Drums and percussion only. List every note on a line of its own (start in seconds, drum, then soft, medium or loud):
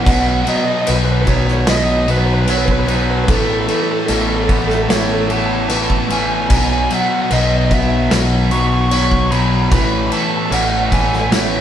0.06 kick loud
0.06 crash medium
0.47 crash medium
0.87 crash medium
1.27 kick medium
1.27 crash medium
1.48 snare soft
1.67 snare loud
1.67 crash medium
2.08 crash medium
2.48 crash medium
2.68 kick medium
2.88 crash medium
3.28 kick loud
3.28 crash medium
3.68 crash medium
4.08 crash medium
4.49 kick medium
4.49 crash medium
4.70 snare soft
4.90 snare loud
4.90 crash medium
5.30 crash medium
5.70 crash medium
5.90 kick medium
6.10 crash medium
6.50 kick loud
6.50 crash loud
6.90 crash medium
7.31 crash medium
7.71 kick medium
7.71 crash medium
8.11 snare loud
8.11 crash medium
8.51 crash medium
8.91 crash medium
9.12 kick medium
9.32 crash medium
9.72 kick loud
9.72 crash medium
10.12 crash medium
10.52 crash medium
10.92 kick medium
10.92 crash medium
11.13 snare soft
11.32 snare loud
11.32 crash medium